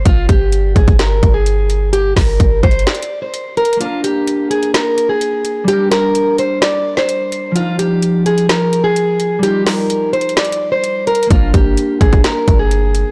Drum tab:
HH |x-----x-----x-----x--x--x-----x-----x-----x-----|x-----o-----x-----x-x-x-x-x-x-------x-----x-x-x-|x-----x-----x-----x--x--x-----x-----x-----x-----|x-----x-----x-----x-----x-----------x-----x-----|
SD |------------------------o-----------------------|------o-----------------o-----------------------|------------------------o-----------------------|------o-----------------o--------o--------------|
BD |o-----o-----------o--o--------o-----------------|------o-----o-----o-----------------------------|------------------------------------------------|------------------------------------------------|

HH |x-----x-----x-----x--x--x-----x-----x-----x-----|x-----o-----x-----x-x-x-x-x-x-------x-----x-x-x-|x-----x-----x-----x--x--x-----x-----x-----x-----|
SD |------------------------o-----------------------|------o-----------------o-----------------------|------------------------o-----------------------|
BD |------------------------------------------------|------------------------------------------------|o-----o-----------o--o--------o-----------------|